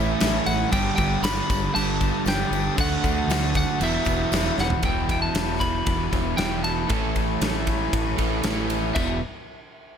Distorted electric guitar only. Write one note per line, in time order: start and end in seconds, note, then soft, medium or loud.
0.00 0.20 A2 loud
0.00 0.19 E3 loud
0.00 0.19 A3 medium
0.00 0.20 C#4 medium
0.00 0.21 E4 medium
0.20 0.70 E3 medium
0.20 0.47 A3 medium
0.20 0.46 C#4 medium
0.20 0.44 E4 loud
0.45 0.71 A3 medium
0.45 0.71 C#4 medium
0.45 0.70 E4 medium
0.70 1.22 G2 loud
0.70 1.23 D3 loud
0.70 0.97 G3 medium
0.70 0.97 B3 medium
0.70 0.96 D4 loud
0.70 0.94 G4 loud
0.95 1.19 G3 medium
0.95 1.21 B3 medium
0.95 1.22 D4 medium
0.95 1.22 G4 medium
1.21 1.72 G3 medium
1.21 1.73 B3 medium
1.21 1.74 D4 medium
1.21 1.74 G4 medium
1.72 2.25 G2 loud
1.72 2.25 D3 loud
1.72 2.00 G3 loud
1.72 2.00 B3 loud
1.72 1.98 D4 loud
1.72 1.98 G4 loud
1.99 2.24 G3 medium
1.99 2.24 B3 medium
1.99 2.26 D4 medium
1.99 2.27 G4 medium
2.25 2.53 G3 medium
2.25 2.52 B3 medium
2.25 2.51 D4 loud
2.25 2.49 G4 medium
2.51 2.75 G3 medium
2.51 2.76 B3 medium
2.51 2.76 D4 medium
2.51 2.75 G4 medium
2.75 3.27 D3 medium
2.75 3.04 A3 loud
2.75 3.03 D4 loud
2.75 3.01 F#4 loud
3.02 3.29 A3 medium
3.02 3.29 D4 medium
3.02 3.30 F#4 medium
3.28 3.79 D3 medium
3.28 3.79 A3 medium
3.28 3.80 D4 medium
3.28 3.80 F#4 loud
3.80 4.32 E2 loud
3.80 4.32 B2 loud
3.80 4.07 E3 loud
3.80 4.07 G3 loud
3.80 4.06 B3 loud
3.80 4.04 E4 loud
4.06 4.31 E3 medium
4.06 4.32 G3 medium
4.06 4.34 B3 medium
4.06 4.34 E4 medium
4.33 4.60 E3 medium
4.33 4.60 G3 loud
4.33 4.59 B3 medium
4.33 4.58 E4 medium
4.59 4.84 E3 medium
4.59 4.84 G3 medium
4.59 4.83 B3 medium
4.59 4.83 E4 medium
4.85 5.36 E2 medium
4.85 5.36 B2 medium
4.85 5.12 E3 medium
4.85 5.10 G3 medium
4.85 5.09 B3 medium
4.85 5.08 E4 medium
5.08 5.35 E3 soft
5.08 5.35 G3 medium
5.08 5.36 B3 medium
5.08 5.37 E4 medium
5.35 5.62 E3 medium
5.35 5.60 G3 medium
5.35 5.59 B3 medium
5.35 5.59 E4 medium
5.60 5.86 E3 medium
5.60 5.86 G3 medium
5.60 5.87 B3 medium
5.60 5.88 E4 medium
5.86 6.64 E2 medium
5.86 6.64 B2 medium
5.86 6.36 E3 medium
5.86 6.37 G3 loud
5.86 6.38 B3 medium
5.86 6.40 E4 loud
6.37 6.65 E3 medium
6.37 6.63 G3 medium
6.37 6.63 B3 medium
6.37 6.62 E4 medium
6.63 6.90 E3 medium
6.63 6.89 G3 soft
6.63 6.89 B3 medium
6.63 6.92 E4 medium
6.89 7.41 A2 medium
6.89 7.40 E3 medium
6.89 7.18 A3 medium
6.89 7.17 C#4 medium
6.89 7.15 E4 medium
7.16 7.41 A3 medium
7.16 7.42 C#4 medium
7.16 7.44 E4 medium
7.42 7.93 E3 medium
7.42 7.69 A3 medium
7.42 7.68 C#4 medium
7.42 7.66 E4 medium
7.68 7.93 A3 medium
7.68 7.94 C#4 medium
7.68 7.95 E4 medium
7.92 8.70 A2 loud
7.92 8.43 E3 medium
7.92 8.44 A3 medium
7.92 8.45 C#4 loud
7.92 8.46 E4 loud
8.45 8.95 E3 medium
8.45 8.70 A3 medium
8.45 8.69 C#4 medium
8.45 8.67 E4 medium
8.69 8.96 A3 medium
8.69 8.95 C#4 medium
8.69 8.94 E4 medium
8.96 9.17 E2 medium
8.96 9.17 B2 medium
8.96 9.17 E3 medium
8.96 9.18 G3 medium
8.96 9.17 B3 loud
8.96 9.18 E4 medium